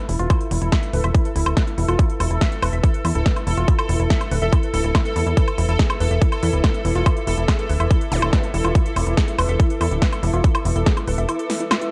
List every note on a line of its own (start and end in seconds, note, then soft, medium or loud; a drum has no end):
0.00 11.91 E4 medium
0.00 11.91 A4 medium
0.00 11.91 B4 medium
0.00 11.91 E5 medium
0.00 5.63 E6 medium
0.09 0.16 E1 medium
0.09 0.17 E4 medium
0.09 open hi-hat loud
0.19 0.27 E1 medium
0.19 0.23 F4 loud
0.19 closed hi-hat medium
0.30 0.33 E4 medium
0.30 kick loud
0.30 closed hi-hat medium
0.30 high woodblock medium
0.41 closed hi-hat medium
0.51 0.59 E1 loud
0.51 0.57 E4 medium
0.51 open hi-hat loud
0.62 0.69 E1 medium
0.62 0.67 E4 medium
0.62 closed hi-hat medium
0.72 0.78 E5 loud
0.72 kick loud
0.72 snare loud
0.72 closed hi-hat medium
0.72 high woodblock soft
0.83 closed hi-hat medium
0.93 1.01 D1 medium
0.93 0.99 B4 medium
0.93 open hi-hat medium
1.04 1.11 E1 medium
1.04 1.13 E5 medium
1.04 closed hi-hat medium
1.04 high woodblock soft
1.15 1.18 E4 medium
1.15 kick loud
1.15 closed hi-hat medium
1.25 closed hi-hat medium
1.36 1.43 D1 loud
1.36 1.41 E4 medium
1.36 open hi-hat loud
1.46 1.54 D1 medium
1.46 1.50 E4 medium
1.46 closed hi-hat medium
1.46 high woodblock medium
1.57 1.65 B4 medium
1.57 kick loud
1.57 snare loud
1.57 closed hi-hat medium
1.67 closed hi-hat medium
1.78 1.85 E1 medium
1.78 1.86 E4 medium
1.78 open hi-hat loud
1.88 1.96 E1 medium
1.88 1.92 F4 loud
1.88 closed hi-hat medium
1.88 high woodblock soft
1.99 2.02 E4 medium
1.99 kick loud
1.99 closed hi-hat medium
2.10 closed hi-hat medium
2.20 2.28 E1 loud
2.20 2.26 E4 medium
2.20 open hi-hat loud
2.20 high woodblock soft
2.31 2.38 E1 medium
2.31 2.36 E4 medium
2.31 closed hi-hat medium
2.41 2.47 E5 loud
2.41 kick loud
2.41 snare loud
2.41 closed hi-hat medium
2.52 closed hi-hat medium
2.62 2.70 E1 medium
2.62 2.68 B4 medium
2.62 open hi-hat medium
2.62 high woodblock medium
2.73 2.80 E1 medium
2.73 2.82 E5 medium
2.73 closed hi-hat medium
2.84 2.87 E4 medium
2.84 kick loud
2.84 closed hi-hat medium
2.94 closed hi-hat medium
3.05 3.12 E2 loud
3.05 3.10 E4 medium
3.05 open hi-hat loud
3.05 high woodblock soft
3.15 3.23 D1 medium
3.15 3.19 E4 medium
3.15 closed hi-hat medium
3.26 3.34 B4 medium
3.26 kick loud
3.26 snare loud
3.26 closed hi-hat medium
3.36 closed hi-hat soft
3.36 high woodblock soft
3.47 3.54 E1 medium
3.47 3.55 E4 medium
3.47 open hi-hat medium
3.57 3.65 E1 medium
3.57 3.61 F4 loud
3.57 closed hi-hat soft
3.68 kick loud
3.68 closed hi-hat medium
3.79 closed hi-hat soft
3.79 high woodblock medium
3.89 3.97 E1 medium
3.89 3.95 E4 medium
3.89 open hi-hat loud
4.00 4.07 E1 medium
4.00 4.05 E4 medium
4.00 closed hi-hat medium
4.10 4.16 E5 loud
4.10 kick loud
4.10 snare loud
4.10 closed hi-hat medium
4.21 closed hi-hat medium
4.21 high woodblock soft
4.31 4.39 D1 loud
4.31 4.37 B4 medium
4.31 open hi-hat loud
4.42 4.49 E1 medium
4.42 4.51 E5 medium
4.42 closed hi-hat medium
4.53 4.56 E4 medium
4.53 kick loud
4.53 closed hi-hat medium
4.53 high woodblock soft
4.63 closed hi-hat soft
4.74 4.81 D1 loud
4.74 4.77 E4 medium
4.74 open hi-hat loud
4.84 4.92 D1 medium
4.84 4.88 E4 medium
4.84 closed hi-hat medium
4.95 5.03 E4 medium
4.95 kick loud
4.95 snare loud
4.95 closed hi-hat medium
4.95 high woodblock medium
5.05 closed hi-hat soft
5.16 5.23 E2 medium
5.16 5.22 E4 medium
5.16 open hi-hat loud
5.26 5.34 E2 medium
5.26 5.30 E4 medium
5.26 closed hi-hat soft
5.37 5.40 E4 medium
5.37 kick loud
5.37 closed hi-hat medium
5.48 11.91 D6 medium
5.48 closed hi-hat soft
5.48 high woodblock soft
5.58 5.66 E1 loud
5.58 5.64 E4 medium
5.58 open hi-hat loud
5.69 5.76 E1 medium
5.69 5.74 E4 medium
5.69 closed hi-hat soft
5.79 5.85 G#4 medium
5.79 kick loud
5.79 snare loud
5.79 closed hi-hat medium
5.90 closed hi-hat medium
5.90 high woodblock medium
6.00 6.08 E1 medium
6.00 6.06 B4 medium
6.00 open hi-hat medium
6.11 6.18 E1 medium
6.11 6.20 E5 medium
6.11 closed hi-hat medium
6.21 6.25 E4 medium
6.21 kick loud
6.21 closed hi-hat medium
6.32 closed hi-hat medium
6.32 high woodblock soft
6.43 6.50 E2 loud
6.43 6.48 E4 medium
6.43 open hi-hat loud
6.53 6.61 D1 medium
6.53 6.57 E4 medium
6.53 closed hi-hat medium
6.64 6.72 B4 medium
6.64 kick loud
6.64 snare loud
6.64 closed hi-hat medium
6.64 high woodblock soft
6.74 closed hi-hat soft
6.85 6.92 E1 medium
6.85 6.94 E4 medium
6.85 open hi-hat loud
6.95 7.03 E1 medium
6.95 6.99 F4 loud
6.95 closed hi-hat soft
7.06 7.09 E4 medium
7.06 kick loud
7.06 closed hi-hat medium
7.06 high woodblock medium
7.17 closed hi-hat soft
7.27 7.35 E1 medium
7.27 7.33 E4 medium
7.27 open hi-hat loud
7.38 7.45 E1 medium
7.38 7.43 E4 medium
7.38 closed hi-hat medium
7.48 7.54 G#4 medium
7.48 kick loud
7.48 snare loud
7.48 closed hi-hat medium
7.48 high woodblock soft
7.59 closed hi-hat medium
7.69 7.77 D1 medium
7.69 7.75 B4 medium
7.69 open hi-hat medium
7.80 7.87 E1 medium
7.80 7.89 E5 medium
7.80 closed hi-hat medium
7.80 high woodblock soft
7.91 7.94 E4 medium
7.91 kick loud
7.91 closed hi-hat medium
8.01 closed hi-hat medium
8.12 8.19 D1 loud
8.12 8.17 E4 medium
8.12 open hi-hat loud
8.12 zap medium
8.22 8.30 D1 medium
8.22 8.26 E4 medium
8.22 closed hi-hat medium
8.22 high woodblock medium
8.33 8.41 B4 medium
8.33 kick loud
8.33 snare loud
8.33 closed hi-hat medium
8.43 closed hi-hat medium
8.54 8.61 E1 medium
8.54 8.63 E4 medium
8.54 open hi-hat medium
8.64 8.72 E1 medium
8.64 8.68 F4 loud
8.64 closed hi-hat medium
8.64 high woodblock soft
8.75 8.79 E4 medium
8.75 kick loud
8.75 closed hi-hat medium
8.86 closed hi-hat medium
8.96 9.04 E1 loud
8.96 9.02 E4 medium
8.96 open hi-hat loud
8.96 high woodblock soft
9.07 9.14 E1 medium
9.07 9.12 E4 medium
9.07 closed hi-hat medium
9.17 9.23 G#4 medium
9.17 kick loud
9.17 snare loud
9.17 closed hi-hat medium
9.28 closed hi-hat medium
9.38 9.46 E1 medium
9.38 9.44 B4 medium
9.38 open hi-hat medium
9.38 high woodblock medium
9.49 9.56 E1 medium
9.49 9.58 E5 medium
9.49 closed hi-hat medium
9.60 9.63 E4 medium
9.60 kick loud
9.60 closed hi-hat medium
9.70 closed hi-hat medium
9.81 9.88 E2 loud
9.81 9.86 E4 medium
9.81 open hi-hat loud
9.81 high woodblock soft
9.91 9.99 D1 medium
9.91 9.95 E4 medium
9.91 closed hi-hat medium
10.02 10.10 B4 medium
10.02 kick loud
10.02 snare loud
10.02 closed hi-hat medium
10.12 closed hi-hat medium
10.12 high woodblock soft
10.23 10.30 E1 medium
10.23 10.32 E4 medium
10.23 open hi-hat medium
10.34 10.41 E1 medium
10.34 10.37 F4 loud
10.34 closed hi-hat medium
10.44 kick loud
10.44 closed hi-hat medium
10.55 closed hi-hat medium
10.55 high woodblock medium
10.65 10.73 E1 loud
10.65 10.71 E4 medium
10.65 open hi-hat loud
10.76 10.83 E1 medium
10.76 10.82 E4 medium
10.76 closed hi-hat medium
10.86 10.92 G#4 medium
10.86 kick loud
10.86 snare loud
10.86 closed hi-hat medium
10.97 closed hi-hat medium
10.97 high woodblock soft
11.07 11.15 D1 medium
11.07 11.13 B4 medium
11.07 open hi-hat medium
11.18 11.25 E1 medium
11.18 11.27 E5 medium
11.18 closed hi-hat medium
11.29 11.32 E4 medium
11.29 closed hi-hat medium
11.29 high woodblock soft
11.39 closed hi-hat medium
11.50 11.53 E4 medium
11.50 snare medium
11.50 open hi-hat loud
11.60 11.66 E4 medium
11.60 closed hi-hat medium
11.71 11.74 F4 medium
11.71 snare loud
11.71 closed hi-hat medium
11.71 high woodblock medium
11.81 11.90 E4 medium
11.81 closed hi-hat medium